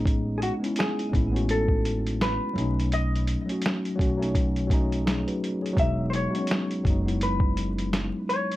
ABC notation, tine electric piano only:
X:1
M:4/4
L:1/16
Q:"Swing 16ths" 1/4=84
K:E
V:1 name="Tine electric piano"
z16 | z12 [DG] [FB]2 [Gc]- | [Gc] z12 z3 |]
V:2 name="Tine electric piano"
[G,B,CD]2 z [G,B,CE]2 z [G,B,CE] [A,B,CF]6 z [F,A,CD]2- | [F,A,CD]2 z [F,A,CF]2 z [F,A,CF] [F,A,CD]2 z [F,A,CD]4- [F,A,CD] z | [F,G,B,D]2 z [F,G,B,C]2 z [F,G,B,D] [F,G,B,E]6 z3 |]